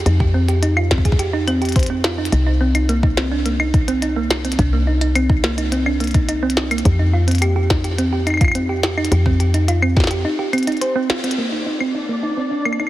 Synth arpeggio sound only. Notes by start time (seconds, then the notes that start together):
0.06 D#4
0.20 G4
0.34 C4
0.48 G4
0.63 D#4
0.77 F4
0.91 C4
1.05 G#4
1.19 G4
1.33 D#4
1.48 C4
1.62 G4
1.76 C5
1.90 C4
2.04 F4
2.18 D#4
2.32 D#4
2.47 D#4
2.61 C4
2.75 D#4
2.89 A#3
3.03 D#4
3.17 C4
3.31 D4
3.46 A#3
3.60 D#4
3.74 D#4
3.88 C4
4.02 D#4
4.16 A#3
4.31 D#4
4.45 C4
4.59 D4
4.73 A#3
4.87 D#4
5.01 D#4
5.15 C4
5.30 D#4
5.44 A#3
5.58 D#4
5.72 C4
5.86 D4
6.00 A#3
6.14 D#4
6.29 D#4
6.43 C4
6.57 D#4
6.71 A#3
6.85 G4
6.99 D#4
7.13 F4
7.28 C4
7.42 G4
7.56 G4
7.70 D#4
7.84 G4
7.98 C4
8.13 G4
8.27 D#4
8.41 F4
8.55 C4
8.69 G4
8.83 G4
8.97 D#4
9.12 G4
9.26 C4
9.40 G4
9.54 D#4
9.68 F4
9.82 C4
9.97 G4
10.11 G4
10.25 D#4
10.39 G4
10.53 C4
10.67 D#4
10.81 C5
10.96 C4
11.10 F4
11.24 C4
11.38 A#3
11.52 D#4
11.66 D#4
11.80 C4
11.95 D#4
12.09 A#3
12.23 D#4
12.37 C4
12.51 D4
12.65 A#3
12.80 D#4